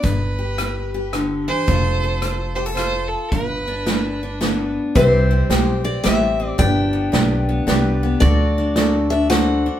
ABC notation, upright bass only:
X:1
M:3/4
L:1/8
Q:"Swing" 1/4=110
K:G
V:1 name="Upright bass" clef=bass
G,,,6 | =F,,,6 | G,,,6 | C,,2 B,,,2 A,,,2 |
G,,,2 B,,,2 C,,2 | D,,6 |]